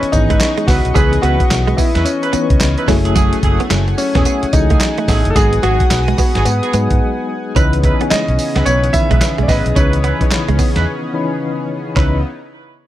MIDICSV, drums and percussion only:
0, 0, Header, 1, 2, 480
1, 0, Start_track
1, 0, Key_signature, 4, "minor"
1, 0, Tempo, 550459
1, 833, Time_signature, 4, 2, 24, 8
1, 11224, End_track
2, 0, Start_track
2, 0, Title_t, "Drums"
2, 24, Note_on_c, 9, 42, 59
2, 111, Note_off_c, 9, 42, 0
2, 113, Note_on_c, 9, 42, 75
2, 114, Note_on_c, 9, 36, 91
2, 114, Note_on_c, 9, 54, 62
2, 200, Note_off_c, 9, 42, 0
2, 201, Note_off_c, 9, 36, 0
2, 201, Note_off_c, 9, 54, 0
2, 263, Note_on_c, 9, 42, 58
2, 264, Note_on_c, 9, 36, 102
2, 350, Note_off_c, 9, 42, 0
2, 351, Note_off_c, 9, 36, 0
2, 353, Note_on_c, 9, 38, 110
2, 353, Note_on_c, 9, 54, 90
2, 354, Note_on_c, 9, 42, 84
2, 355, Note_on_c, 9, 39, 90
2, 440, Note_off_c, 9, 38, 0
2, 441, Note_off_c, 9, 42, 0
2, 441, Note_off_c, 9, 54, 0
2, 442, Note_off_c, 9, 39, 0
2, 502, Note_on_c, 9, 42, 44
2, 589, Note_off_c, 9, 42, 0
2, 590, Note_on_c, 9, 36, 87
2, 593, Note_on_c, 9, 54, 67
2, 594, Note_on_c, 9, 46, 71
2, 595, Note_on_c, 9, 38, 82
2, 677, Note_off_c, 9, 36, 0
2, 681, Note_off_c, 9, 46, 0
2, 681, Note_off_c, 9, 54, 0
2, 682, Note_off_c, 9, 38, 0
2, 741, Note_on_c, 9, 42, 53
2, 829, Note_off_c, 9, 42, 0
2, 833, Note_on_c, 9, 36, 118
2, 835, Note_on_c, 9, 42, 79
2, 835, Note_on_c, 9, 54, 74
2, 920, Note_off_c, 9, 36, 0
2, 922, Note_off_c, 9, 42, 0
2, 922, Note_off_c, 9, 54, 0
2, 984, Note_on_c, 9, 42, 57
2, 1071, Note_off_c, 9, 42, 0
2, 1074, Note_on_c, 9, 42, 70
2, 1162, Note_off_c, 9, 42, 0
2, 1221, Note_on_c, 9, 36, 100
2, 1223, Note_on_c, 9, 42, 53
2, 1308, Note_off_c, 9, 36, 0
2, 1310, Note_off_c, 9, 42, 0
2, 1314, Note_on_c, 9, 38, 114
2, 1314, Note_on_c, 9, 42, 92
2, 1315, Note_on_c, 9, 54, 87
2, 1317, Note_on_c, 9, 39, 84
2, 1401, Note_off_c, 9, 38, 0
2, 1402, Note_off_c, 9, 42, 0
2, 1402, Note_off_c, 9, 54, 0
2, 1404, Note_off_c, 9, 39, 0
2, 1464, Note_on_c, 9, 42, 38
2, 1551, Note_off_c, 9, 42, 0
2, 1553, Note_on_c, 9, 36, 100
2, 1553, Note_on_c, 9, 54, 75
2, 1555, Note_on_c, 9, 46, 75
2, 1640, Note_off_c, 9, 54, 0
2, 1641, Note_off_c, 9, 36, 0
2, 1642, Note_off_c, 9, 46, 0
2, 1702, Note_on_c, 9, 38, 69
2, 1704, Note_on_c, 9, 42, 52
2, 1790, Note_off_c, 9, 38, 0
2, 1791, Note_off_c, 9, 42, 0
2, 1793, Note_on_c, 9, 42, 79
2, 1796, Note_on_c, 9, 54, 73
2, 1880, Note_off_c, 9, 42, 0
2, 1883, Note_off_c, 9, 54, 0
2, 1945, Note_on_c, 9, 42, 57
2, 2032, Note_off_c, 9, 42, 0
2, 2032, Note_on_c, 9, 42, 78
2, 2033, Note_on_c, 9, 54, 67
2, 2120, Note_off_c, 9, 42, 0
2, 2120, Note_off_c, 9, 54, 0
2, 2182, Note_on_c, 9, 42, 59
2, 2183, Note_on_c, 9, 36, 104
2, 2269, Note_off_c, 9, 42, 0
2, 2270, Note_off_c, 9, 36, 0
2, 2272, Note_on_c, 9, 38, 110
2, 2272, Note_on_c, 9, 54, 95
2, 2273, Note_on_c, 9, 42, 89
2, 2274, Note_on_c, 9, 39, 89
2, 2359, Note_off_c, 9, 38, 0
2, 2360, Note_off_c, 9, 42, 0
2, 2360, Note_off_c, 9, 54, 0
2, 2361, Note_off_c, 9, 39, 0
2, 2421, Note_on_c, 9, 42, 44
2, 2508, Note_off_c, 9, 42, 0
2, 2510, Note_on_c, 9, 36, 93
2, 2514, Note_on_c, 9, 54, 69
2, 2515, Note_on_c, 9, 38, 81
2, 2515, Note_on_c, 9, 46, 69
2, 2597, Note_off_c, 9, 36, 0
2, 2601, Note_off_c, 9, 54, 0
2, 2602, Note_off_c, 9, 38, 0
2, 2602, Note_off_c, 9, 46, 0
2, 2662, Note_on_c, 9, 42, 60
2, 2749, Note_off_c, 9, 42, 0
2, 2752, Note_on_c, 9, 36, 115
2, 2752, Note_on_c, 9, 42, 80
2, 2752, Note_on_c, 9, 54, 76
2, 2839, Note_off_c, 9, 36, 0
2, 2839, Note_off_c, 9, 42, 0
2, 2839, Note_off_c, 9, 54, 0
2, 2901, Note_on_c, 9, 42, 59
2, 2988, Note_off_c, 9, 42, 0
2, 2990, Note_on_c, 9, 36, 91
2, 2991, Note_on_c, 9, 42, 73
2, 3078, Note_off_c, 9, 36, 0
2, 3078, Note_off_c, 9, 42, 0
2, 3139, Note_on_c, 9, 42, 49
2, 3226, Note_off_c, 9, 42, 0
2, 3230, Note_on_c, 9, 38, 107
2, 3231, Note_on_c, 9, 42, 82
2, 3231, Note_on_c, 9, 54, 83
2, 3233, Note_on_c, 9, 39, 91
2, 3318, Note_off_c, 9, 38, 0
2, 3318, Note_off_c, 9, 42, 0
2, 3318, Note_off_c, 9, 54, 0
2, 3320, Note_off_c, 9, 39, 0
2, 3381, Note_on_c, 9, 42, 38
2, 3468, Note_off_c, 9, 42, 0
2, 3471, Note_on_c, 9, 54, 75
2, 3473, Note_on_c, 9, 46, 75
2, 3558, Note_off_c, 9, 54, 0
2, 3560, Note_off_c, 9, 46, 0
2, 3619, Note_on_c, 9, 38, 72
2, 3621, Note_on_c, 9, 36, 93
2, 3621, Note_on_c, 9, 42, 49
2, 3706, Note_off_c, 9, 38, 0
2, 3708, Note_off_c, 9, 36, 0
2, 3708, Note_off_c, 9, 42, 0
2, 3709, Note_on_c, 9, 42, 73
2, 3712, Note_on_c, 9, 54, 73
2, 3797, Note_off_c, 9, 42, 0
2, 3799, Note_off_c, 9, 54, 0
2, 3861, Note_on_c, 9, 42, 58
2, 3949, Note_off_c, 9, 42, 0
2, 3949, Note_on_c, 9, 42, 78
2, 3950, Note_on_c, 9, 54, 66
2, 3952, Note_on_c, 9, 36, 88
2, 4036, Note_off_c, 9, 42, 0
2, 4037, Note_off_c, 9, 54, 0
2, 4039, Note_off_c, 9, 36, 0
2, 4100, Note_on_c, 9, 42, 55
2, 4102, Note_on_c, 9, 36, 97
2, 4188, Note_off_c, 9, 42, 0
2, 4189, Note_off_c, 9, 36, 0
2, 4190, Note_on_c, 9, 38, 106
2, 4191, Note_on_c, 9, 42, 88
2, 4191, Note_on_c, 9, 54, 90
2, 4193, Note_on_c, 9, 39, 90
2, 4277, Note_off_c, 9, 38, 0
2, 4278, Note_off_c, 9, 42, 0
2, 4278, Note_off_c, 9, 54, 0
2, 4280, Note_off_c, 9, 39, 0
2, 4340, Note_on_c, 9, 42, 41
2, 4427, Note_off_c, 9, 42, 0
2, 4430, Note_on_c, 9, 36, 92
2, 4433, Note_on_c, 9, 54, 64
2, 4434, Note_on_c, 9, 38, 76
2, 4434, Note_on_c, 9, 46, 75
2, 4517, Note_off_c, 9, 36, 0
2, 4520, Note_off_c, 9, 54, 0
2, 4521, Note_off_c, 9, 38, 0
2, 4521, Note_off_c, 9, 46, 0
2, 4580, Note_on_c, 9, 42, 55
2, 4667, Note_off_c, 9, 42, 0
2, 4672, Note_on_c, 9, 36, 120
2, 4672, Note_on_c, 9, 42, 83
2, 4672, Note_on_c, 9, 54, 76
2, 4759, Note_off_c, 9, 36, 0
2, 4759, Note_off_c, 9, 42, 0
2, 4759, Note_off_c, 9, 54, 0
2, 4820, Note_on_c, 9, 42, 61
2, 4907, Note_off_c, 9, 42, 0
2, 4911, Note_on_c, 9, 42, 68
2, 4998, Note_off_c, 9, 42, 0
2, 5059, Note_on_c, 9, 42, 53
2, 5060, Note_on_c, 9, 36, 107
2, 5146, Note_off_c, 9, 42, 0
2, 5147, Note_off_c, 9, 36, 0
2, 5150, Note_on_c, 9, 38, 112
2, 5150, Note_on_c, 9, 42, 93
2, 5151, Note_on_c, 9, 54, 82
2, 5152, Note_on_c, 9, 39, 88
2, 5237, Note_off_c, 9, 38, 0
2, 5237, Note_off_c, 9, 42, 0
2, 5238, Note_off_c, 9, 54, 0
2, 5240, Note_off_c, 9, 39, 0
2, 5301, Note_on_c, 9, 42, 40
2, 5388, Note_off_c, 9, 42, 0
2, 5390, Note_on_c, 9, 54, 73
2, 5392, Note_on_c, 9, 36, 105
2, 5392, Note_on_c, 9, 46, 75
2, 5477, Note_off_c, 9, 54, 0
2, 5479, Note_off_c, 9, 46, 0
2, 5480, Note_off_c, 9, 36, 0
2, 5539, Note_on_c, 9, 38, 73
2, 5541, Note_on_c, 9, 42, 52
2, 5627, Note_off_c, 9, 38, 0
2, 5628, Note_off_c, 9, 42, 0
2, 5629, Note_on_c, 9, 42, 77
2, 5631, Note_on_c, 9, 54, 74
2, 5716, Note_off_c, 9, 42, 0
2, 5719, Note_off_c, 9, 54, 0
2, 5782, Note_on_c, 9, 42, 53
2, 5869, Note_off_c, 9, 42, 0
2, 5872, Note_on_c, 9, 42, 73
2, 5873, Note_on_c, 9, 54, 60
2, 5959, Note_off_c, 9, 42, 0
2, 5960, Note_off_c, 9, 54, 0
2, 6021, Note_on_c, 9, 42, 56
2, 6023, Note_on_c, 9, 36, 103
2, 6108, Note_off_c, 9, 42, 0
2, 6110, Note_off_c, 9, 36, 0
2, 6593, Note_on_c, 9, 36, 114
2, 6593, Note_on_c, 9, 42, 75
2, 6593, Note_on_c, 9, 54, 77
2, 6680, Note_off_c, 9, 36, 0
2, 6680, Note_off_c, 9, 42, 0
2, 6680, Note_off_c, 9, 54, 0
2, 6742, Note_on_c, 9, 42, 61
2, 6829, Note_off_c, 9, 42, 0
2, 6832, Note_on_c, 9, 36, 95
2, 6832, Note_on_c, 9, 42, 68
2, 6919, Note_off_c, 9, 36, 0
2, 6919, Note_off_c, 9, 42, 0
2, 6982, Note_on_c, 9, 42, 47
2, 7069, Note_off_c, 9, 42, 0
2, 7073, Note_on_c, 9, 38, 116
2, 7074, Note_on_c, 9, 42, 87
2, 7074, Note_on_c, 9, 54, 88
2, 7076, Note_on_c, 9, 39, 85
2, 7161, Note_off_c, 9, 38, 0
2, 7161, Note_off_c, 9, 42, 0
2, 7161, Note_off_c, 9, 54, 0
2, 7163, Note_off_c, 9, 39, 0
2, 7224, Note_on_c, 9, 42, 42
2, 7311, Note_off_c, 9, 42, 0
2, 7313, Note_on_c, 9, 54, 74
2, 7315, Note_on_c, 9, 46, 86
2, 7400, Note_off_c, 9, 54, 0
2, 7402, Note_off_c, 9, 46, 0
2, 7462, Note_on_c, 9, 38, 71
2, 7463, Note_on_c, 9, 42, 48
2, 7549, Note_off_c, 9, 38, 0
2, 7550, Note_off_c, 9, 42, 0
2, 7552, Note_on_c, 9, 42, 72
2, 7555, Note_on_c, 9, 54, 71
2, 7640, Note_off_c, 9, 42, 0
2, 7642, Note_off_c, 9, 54, 0
2, 7705, Note_on_c, 9, 42, 53
2, 7792, Note_off_c, 9, 42, 0
2, 7793, Note_on_c, 9, 42, 79
2, 7793, Note_on_c, 9, 54, 63
2, 7794, Note_on_c, 9, 36, 92
2, 7880, Note_off_c, 9, 42, 0
2, 7881, Note_off_c, 9, 36, 0
2, 7881, Note_off_c, 9, 54, 0
2, 7942, Note_on_c, 9, 42, 57
2, 7944, Note_on_c, 9, 36, 104
2, 8029, Note_off_c, 9, 42, 0
2, 8031, Note_off_c, 9, 36, 0
2, 8033, Note_on_c, 9, 38, 105
2, 8034, Note_on_c, 9, 42, 80
2, 8034, Note_on_c, 9, 54, 93
2, 8035, Note_on_c, 9, 39, 91
2, 8120, Note_off_c, 9, 38, 0
2, 8121, Note_off_c, 9, 42, 0
2, 8121, Note_off_c, 9, 54, 0
2, 8123, Note_off_c, 9, 39, 0
2, 8182, Note_on_c, 9, 42, 41
2, 8269, Note_off_c, 9, 42, 0
2, 8270, Note_on_c, 9, 36, 81
2, 8274, Note_on_c, 9, 54, 63
2, 8275, Note_on_c, 9, 38, 72
2, 8275, Note_on_c, 9, 46, 67
2, 8358, Note_off_c, 9, 36, 0
2, 8361, Note_off_c, 9, 54, 0
2, 8362, Note_off_c, 9, 38, 0
2, 8362, Note_off_c, 9, 46, 0
2, 8422, Note_on_c, 9, 42, 57
2, 8509, Note_off_c, 9, 42, 0
2, 8513, Note_on_c, 9, 36, 119
2, 8514, Note_on_c, 9, 42, 75
2, 8514, Note_on_c, 9, 54, 77
2, 8600, Note_off_c, 9, 36, 0
2, 8601, Note_off_c, 9, 42, 0
2, 8601, Note_off_c, 9, 54, 0
2, 8661, Note_on_c, 9, 42, 60
2, 8748, Note_off_c, 9, 42, 0
2, 8754, Note_on_c, 9, 42, 67
2, 8841, Note_off_c, 9, 42, 0
2, 8901, Note_on_c, 9, 36, 99
2, 8903, Note_on_c, 9, 42, 50
2, 8989, Note_off_c, 9, 36, 0
2, 8990, Note_off_c, 9, 42, 0
2, 8993, Note_on_c, 9, 38, 106
2, 8993, Note_on_c, 9, 42, 90
2, 8993, Note_on_c, 9, 54, 85
2, 8995, Note_on_c, 9, 39, 86
2, 9080, Note_off_c, 9, 38, 0
2, 9080, Note_off_c, 9, 42, 0
2, 9081, Note_off_c, 9, 54, 0
2, 9082, Note_off_c, 9, 39, 0
2, 9143, Note_on_c, 9, 42, 42
2, 9230, Note_off_c, 9, 42, 0
2, 9232, Note_on_c, 9, 54, 69
2, 9233, Note_on_c, 9, 36, 99
2, 9234, Note_on_c, 9, 46, 80
2, 9319, Note_off_c, 9, 54, 0
2, 9320, Note_off_c, 9, 36, 0
2, 9321, Note_off_c, 9, 46, 0
2, 9381, Note_on_c, 9, 38, 64
2, 9383, Note_on_c, 9, 42, 51
2, 9469, Note_off_c, 9, 38, 0
2, 9470, Note_off_c, 9, 42, 0
2, 10433, Note_on_c, 9, 36, 106
2, 10433, Note_on_c, 9, 39, 88
2, 10520, Note_off_c, 9, 36, 0
2, 10521, Note_off_c, 9, 39, 0
2, 11224, End_track
0, 0, End_of_file